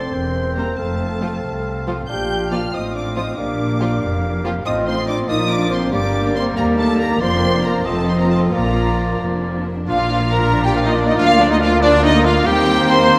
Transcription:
Already playing: french horn section C4, bassoon C4, clarinet A4, flute section C5, oboe A5, violin section C6
0.13 double bass section E1, cello section E2, clarinet A#4, oboe G5
0.56 viola section G3 A#3, french horn section A#3, violin section C4 C5 A#5, flute section A#4
0.78 double bass section F1, cello section F2, french horn section A3, clarinet A4, flute section A4, oboe F5, violin section A5
1.21 viola section F3 A3, violin section F4 C5
1.43 cello section C2, double bass section C2
1.87 viola section F3 A3, violin section F4 C5
2.08 double bass section A#1, cello section A#2, bassoon D4, clarinet F4, french horn section G4, flute section G5, violin section G6
2.51 viola section F3 A#3, french horn section F4, violin section F4 D5 F6, flute section F5
2.71 double bass section A1, cello section A2, bassoon C4, french horn section D#4, flute section D#5, violin section D#6
2.94 french horn section D4, flute section D5, violin section D6
3.15 viola section F3 C4, french horn section D#4, violin section F4 C5 D#6, flute section D#5
3.36 double bass section A#1, cello section A#2, bassoon A#3, french horn section D4, clarinet G4, flute section D5, oboe F5, violin section D6
3.80 viola section F3 A#3, violin section F4 G4
4.01 double bass section F1, cello section F2
4.44 viola section F3 A#3, violin section F4 G4
4.65 double bass section A1, cello section A2, viola section F3 C4, violin section A3 F4 D#6, bassoon C4, french horn section D#4, clarinet F4, flute section D#5, oboe F5
4.76 violin section C4
4.86 french horn section C4, violin section D#4 C6, flute section C5
4.97 violin section F4, oboe D#5
5.07 french horn section D4, violin section D#4 D6, flute section D5
5.18 violin section C4
5.28 double bass section A#1, cello section A#2, viola section A#3, violin section A#3 D#6, bassoon A#3, french horn section D#4, clarinet F4, oboe D5, flute section D#5
5.39 violin section D4
5.50 violin section A#3 D6, french horn section D4, flute section D5
5.60 violin section D4
5.70 violin section A#3 C6, french horn section C4, flute section C5
5.81 violin section D4
5.91 double bass section G1, cello section G2, violin section G3 A#4 D6, viola section G3, bassoon A#3, french horn section D4, clarinet G4, flute section D5, oboe D5
6.03 violin section A#3
6.14 violin section D4
6.25 violin section A#3
6.35 violin section G3 C6, french horn section C4, flute section C5
6.47 violin section A#3
6.56 cello section D#2, double bass section D#2, violin section G3 A#5, bassoon A#3, french horn section A#3, clarinet G4, flute section A#4, oboe D5
6.68 violin section A#3
6.78 french horn section A3, violin section D4 A5, flute section A4
6.88 violin section D#4
6.99 french horn section A#3, violin section D4 A#5, flute section A#4
7.11 violin section A#3
7.21 double bass section F1, cello section F2, viola section F3, violin section A#3 C6, bassoon A#3, french horn section C4, clarinet F4, flute section C5, oboe D5
7.32 violin section D4
7.43 violin section A#3
7.54 violin section D4
7.64 violin section A#3 A#5, french horn section A#3, flute section A#4
7.74 violin section D4
7.85 double bass section F1, cello section F2, violin section A3 F4 A5, french horn section A3, viola section C4, bassoon C4, clarinet F4, flute section A4, oboe D#5
7.96 violin section C4
8.07 french horn section C4, violin section D#4 C6, flute section C5
8.18 french horn section A#3, violin section C4 A#5, flute section A#4
8.29 violin section A3 A5, french horn section A3, flute section A4
8.40 violin section C4
8.51 double bass section A#1, cello section A#2, french horn section A#3, violin section A#3 A#5, viola section A#3, bassoon A#3, clarinet F4, flute section A#4, oboe D5
8.63 violin section D4
8.74 violin section A#3
8.86 violin section D4
8.97 violin section A#3
9.09 violin section D4
9.21 double bass section F1, cello section F2, violin section A#3
9.32 violin section D4
9.43 violin section A#3
9.55 violin section D4
9.66 violin section A#3
9.77 violin section D4
9.88 double bass section A#1, cello section A#2, viola section F3 D4, french horn section A#3 D4, bassoon A#3, violin section F4 F5, clarinet F4, trumpet F4, oboe D5, flute section F5
9.99 viola section A#3 F4
10.09 viola section F3 D4
10.21 viola section A#3 F4
10.30 viola section F3 D4, trumpet A#4, violin section A#4 A#5, flute section A#5
10.41 viola section A#3 F4
10.52 viola section F3 D4
10.63 viola section A#3 F4, trumpet G4, violin section G4 G5, flute section G5
10.73 viola section F3 D4, trumpet F4, violin section F4 F5, flute section F5
10.84 viola section A#3 F4, trumpet D#4, violin section D#4 D#5, flute section D#5
10.95 viola section F3 D4, trumpet D4, violin section D4 D5, flute section D5
11.05 viola section A#3 F4, violin section D#4 D#5, trumpet D#4, flute section D#5
11.16 cello section D2, double bass section D2, viola section F3 D4, french horn section A#3 D4, trumpet F4, violin section F4 F5, flute section F5
11.27 viola section A#3 F4
11.38 viola section F3 D4, trumpet D4, violin section D4 D5, flute section D5
11.48 viola section A#3 F4, violin section D#4 D#5, trumpet D#4, flute section D#5
11.59 viola section F3 D4, violin section F4 F5, trumpet F4, flute section F5
11.70 viola section A#3 F4
11.81 viola section F3 D4, french horn section A#3 D4, trumpet D4, violin section D4 D5, flute section D5
11.91 viola section A#3 F4
12.02 viola section F3 D4, trumpet D#4, violin section D#4 D#5, flute section D#5
12.12 viola section A#3 F4
12.23 viola section F3 D4, trumpet F4, violin section F4 F5, flute section F5
12.34 viola section A#3 F4
12.45 double bass section D#2, cello section D#2, viola section G3 C4, bassoon A#3, french horn section A#3 C4, clarinet D#4, trumpet G4, violin section G4 G5, oboe C5, flute section G5
12.56 viola section A#3 D#4
12.67 viola section G3 C4
12.77 viola section A#3 D#4
12.88 viola section G3 C4, trumpet C5, violin section C5 C6, flute section C6
12.99 viola section A#3 D#4
13.10 viola section G3 C4

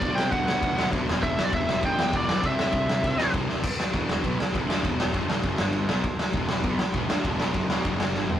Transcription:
Already playing: lead electric guitar D5
0.01 picked electric bass D2, distorted electric guitar B2 F#3 B3, kick, ride
0.15 picked electric bass C3, lead electric guitar G5, snare
0.32 picked electric bass D2, lead electric guitar F#5, kick, ride
0.48 picked electric bass D2, snare
0.62 picked electric bass D2, kick, ride
0.75 picked electric bass D2, distorted electric guitar B2 F#3 B3, snare
0.91 picked electric bass D2, distorted electric guitar B2 F#3 B3, kick, ride
1.07 picked electric bass E1, distorted electric guitar E2 B2 E3, snare
1.23 picked electric bass E1, lead electric guitar E5, kick, ride
1.38 picked electric bass B1, snare
1.45 lead electric guitar D5
1.53 picked electric bass E1, lead electric guitar E5, kick, ride
1.67 picked electric bass E1, snare
1.80 picked electric bass E1, distorted electric guitar E2 B2 E3, kick, ride
1.86 lead electric guitar G5
1.96 picked electric bass E2, distorted electric guitar E2 B2 E3, snare
2.13 picked electric bass E1, lead electric guitar D5, kick, ride
2.28 picked electric bass B1, snare
2.41 picked electric bass C2, distorted electric guitar C3 G3 C4, kick, ride
2.47 lead electric guitar E5
2.59 picked electric bass A2, snare
2.73 picked electric bass C2, kick, ride
2.89 picked electric bass C2, snare
3.03 picked electric bass C2, kick, ride
3.17 picked electric bass C2, distorted electric guitar C3 G3 C4, snare
3.31 picked electric bass C2, distorted electric guitar C3 G3 C4, kick, ride
3.47 picked electric bass C2, snare
3.63 kick, crash
3.80 snare
3.92 picked electric bass E1, distorted electric guitar E2 B2 E3, kick, ride
4.09 snare
4.22 picked electric bass B1, distorted electric guitar B2 F#3 B3, kick, ride
4.40 snare
4.52 picked electric bass E1, distorted electric guitar E2 B2 E3, kick, ride
4.66 picked electric bass D2, distorted electric guitar D3 A3 D4, snare
4.82 picked electric bass E1, distorted electric guitar E2 B2 E3, kick, ride
5.00 snare
5.13 picked electric bass F#1, distorted electric guitar F#2 C#3 F#3, kick, ride
5.27 picked electric bass E1, distorted electric guitar E2 B2 E3, snare
5.43 picked electric bass F#1, distorted electric guitar F#2 C#3 F#3, kick, ride
5.58 picked electric bass G1, distorted electric guitar G2 D3 G3, snare
5.73 ride
5.89 picked electric bass B1, distorted electric guitar B2 F#3 B3, snare
6.04 kick, ride
6.19 snare
6.32 picked electric bass E1, distorted electric guitar E2 B2 E3, kick, ride
6.49 snare
6.63 picked electric bass B1, distorted electric guitar B2 F#3 B3, kick, ride
6.79 snare
6.94 picked electric bass E1, distorted electric guitar E2 B2 E3, kick, ride
7.09 picked electric bass D2, distorted electric guitar D3 A3 D4, snare
7.23 picked electric bass E1, distorted electric guitar E2 B2 E3, kick, ride
7.40 snare
7.54 picked electric bass F#1, distorted electric guitar F#2 C#3 F#3, kick, ride
7.70 picked electric bass E1, distorted electric guitar E2 B2 E3, snare
7.83 picked electric bass F#1, distorted electric guitar F#2 C#3 F#3, kick, ride
8.00 snare
8.14 picked electric bass G1, distorted electric guitar G2 D3 G3, snare
8.30 floor tom

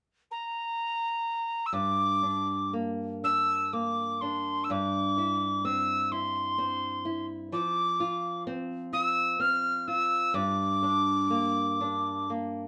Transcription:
0.31 tin whistle A#5
1.66 tin whistle E6
1.73 nylon-string guitar G2, tin whistle D6
2.23 nylon-string guitar D4
2.73 nylon-string guitar A#3
3.24 nylon-string guitar D4, tin whistle E6
3.73 nylon-string guitar A#3, tin whistle D6
4.21 nylon-string guitar D4, tin whistle C6
4.64 tin whistle E6
4.70 nylon-string guitar G2, tin whistle D6
5.18 nylon-string guitar E4
5.65 nylon-string guitar C4, tin whistle E6
6.11 nylon-string guitar E4, tin whistle C6
6.58 nylon-string guitar C4
7.05 nylon-string guitar E4
7.52 nylon-string guitar F3, tin whistle D6
8.00 nylon-string guitar F4
8.47 nylon-string guitar C4
8.93 nylon-string guitar F4, tin whistle E6
9.39 nylon-string guitar C4, tin whistle F6
9.87 nylon-string guitar F4, tin whistle E6
10.34 nylon-string guitar G2, tin whistle D6
10.83 nylon-string guitar D4
11.30 nylon-string guitar A#3
11.81 nylon-string guitar D4
12.30 nylon-string guitar A#3

